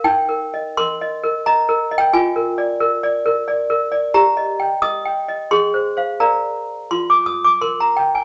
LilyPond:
\new Staff \with { instrumentName = "Toy piano" } { \time 3/4 \key ees \major \tempo 4 = 87 << { g''4 c'''4 bes''8. g''16 | aes''2~ aes''8 r8 | bes''4 ees'''4 c'''4 | bes''4 c'''16 d'''16 ees'''16 d'''16 c'''16 bes''16 g''16 aes''16 | } \\ { \tuplet 3/2 { ees'8 bes'8 ees''8 bes'8 ees''8 bes'8 ees''8 bes'8 ees''8 } | \tuplet 3/2 { f'8 bes'8 d''8 bes'8 d''8 bes'8 d''8 bes'8 d''8 } | \tuplet 3/2 { g'8 ees''8 g''8 ees''8 g''8 ees''8 aes'8 c''8 <c'' f''>8 } | <bes' d'' f''>4 f'4 bes'4 | } >> }